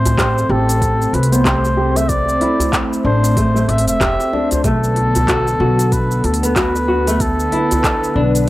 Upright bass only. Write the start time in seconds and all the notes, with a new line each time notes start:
Already playing: A1
0.49 A1
1.13 C2
3.05 A1
3.68 A1
3.87 E1
4.01 E1
4.64 B1
5.60 B1
6.24 D2
8.16 B1